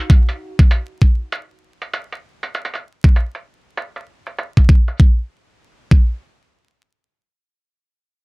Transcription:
0.00 0.10 F5 medium
0.10 kick loud
0.10 closed hi-hat medium
0.29 closed hi-hat soft
0.59 kick medium
0.59 closed hi-hat soft
0.71 closed hi-hat medium
1.02 kick medium
1.32 closed hi-hat medium
1.82 closed hi-hat soft
1.93 closed hi-hat medium
2.12 closed hi-hat soft
2.43 closed hi-hat soft
2.55 closed hi-hat medium
2.65 closed hi-hat medium
2.74 closed hi-hat soft
2.75 closed hi-hat soft
3.04 kick loud
3.04 closed hi-hat soft
3.16 closed hi-hat medium
3.35 closed hi-hat soft
3.77 closed hi-hat medium
3.96 closed hi-hat soft
4.27 closed hi-hat soft
4.39 closed hi-hat medium
4.57 kick medium
4.57 closed hi-hat soft
4.69 kick medium
4.88 closed hi-hat soft
5.00 kick loud
5.91 kick loud

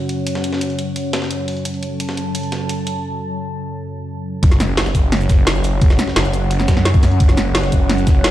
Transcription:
0.00 4.39 F#3 medium
0.00 4.39 C#4 medium
0.00 4.39 C#5 medium
0.00 1.64 F#5 medium
0.09 closed hi-hat medium
0.27 closed hi-hat medium
0.35 snare soft
0.44 closed hi-hat medium
0.53 snare soft
0.61 closed hi-hat medium
0.70 closed hi-hat soft
0.79 closed hi-hat medium
0.96 closed hi-hat medium
1.13 snare loud
1.13 closed hi-hat medium
1.22 snare soft
1.31 closed hi-hat medium
1.48 closed hi-hat medium
1.48 open hi-hat medium
1.57 closed hi-hat soft
1.65 4.42 A5 medium
1.65 closed hi-hat medium
1.74 closed hi-hat soft
1.83 closed hi-hat medium
2.00 closed hi-hat medium
2.09 snare soft
2.17 closed hi-hat medium
2.35 closed hi-hat medium
2.35 open hi-hat medium
2.43 closed hi-hat soft
2.52 snare soft
2.52 closed hi-hat medium
2.69 closed hi-hat medium
2.87 closed hi-hat medium
4.43 4.93 F#1 loud
4.43 8.31 F#3 medium
4.43 8.31 C#4 medium
4.43 8.31 C#5 medium
4.43 8.31 F#5 medium
4.43 kick loud
4.43 closed hi-hat medium
4.43 closed hi-hat loud
4.51 snare soft
4.51 closed hi-hat soft
4.51 shaker soft
4.60 snare medium
4.60 closed hi-hat medium
4.60 shaker medium
4.77 snare loud
4.77 closed hi-hat medium
4.77 closed hi-hat loud
4.86 snare medium
4.86 shaker soft
4.95 5.28 F#1 loud
4.95 kick medium
4.95 closed hi-hat medium
4.95 shaker medium
5.12 snare medium
5.12 closed hi-hat loud
5.12 open hi-hat medium
5.21 closed hi-hat soft
5.21 shaker soft
5.29 5.45 F#1 loud
5.29 kick loud
5.29 snare soft
5.29 closed hi-hat medium
5.29 shaker medium
5.47 5.97 F#1 loud
5.47 snare loud
5.47 closed hi-hat loud
5.47 closed hi-hat medium
5.55 shaker soft
5.64 closed hi-hat medium
5.64 open hi-hat medium
5.64 shaker medium
5.81 kick loud
5.81 closed hi-hat loud
5.81 closed hi-hat medium
5.90 snare soft
5.90 snare medium
5.90 shaker soft
5.99 snare medium
5.99 closed hi-hat medium
5.99 shaker medium
6.08 snare soft
6.16 6.67 F#1 loud
6.16 snare loud
6.16 closed hi-hat medium
6.25 closed hi-hat soft
6.25 shaker soft
6.33 closed hi-hat medium
6.33 shaker medium
6.51 closed hi-hat medium
6.60 snare soft
6.60 shaker soft
6.68 7.19 F#2 loud
6.68 kick medium
6.68 snare loud
6.68 closed hi-hat medium
6.68 shaker medium
6.77 snare soft
6.85 snare loud
6.85 closed hi-hat loud
6.85 closed hi-hat medium
6.94 kick loud
6.94 shaker soft
7.03 snare soft
7.03 open hi-hat medium
7.03 shaker medium
7.12 closed hi-hat soft
7.20 7.71 F#1 loud
7.20 kick loud
7.20 closed hi-hat medium
7.29 snare soft
7.29 closed hi-hat soft
7.29 shaker soft
7.37 snare soft
7.37 closed hi-hat medium
7.37 shaker medium
7.55 snare loud
7.55 closed hi-hat loud
7.55 closed hi-hat medium
7.63 snare medium
7.63 shaker soft
7.72 8.05 F#1 loud
7.72 kick medium
7.72 closed hi-hat medium
7.72 shaker medium
7.90 snare medium
7.90 closed hi-hat medium
7.90 open hi-hat medium
7.98 closed hi-hat soft
7.98 shaker soft
8.07 8.23 F#1 loud
8.07 kick loud
8.07 snare soft
8.07 closed hi-hat medium
8.07 shaker medium
8.24 8.31 F#1 loud
8.24 snare loud
8.24 closed hi-hat medium

